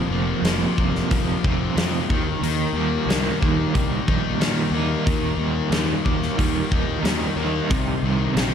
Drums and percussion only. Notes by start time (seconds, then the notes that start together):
0.45 snare, open hi-hat
0.78 kick
0.96 snare
1.11 kick, open hi-hat
1.44 kick
1.78 snare, open hi-hat
2.10 kick
2.44 open hi-hat
3.10 snare, open hi-hat
3.42 kick
3.75 kick, open hi-hat
4.08 kick
4.41 snare, open hi-hat
5.07 kick, open hi-hat
5.72 snare, open hi-hat
6.06 kick
6.23 snare
6.39 kick, open hi-hat
6.72 kick
7.05 snare, open hi-hat
7.71 kick, open hi-hat
8.37 snare, open hi-hat